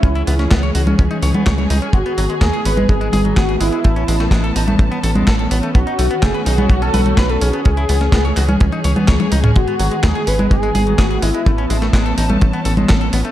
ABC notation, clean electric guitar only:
X:1
M:4/4
L:1/16
Q:1/4=126
K:C#m
V:1 name="Clean electric guitar"
C E B, C B, c F C C D c B, c c D C | G, B, F, G, F, G C G, G, G, G F, G G G, G, | A, C G, A, G, A D A, A, B, A G, A A B, A, | B, D A, B, A, B D B, B, C B A, B B C B, |
C E B, C B, c F C C D c B, c c D C | G, B, F, G, F, G C G, G, G, G F, G G G, G, | A, C G, A, G, A D A, A, B, A G, A A B, A, |]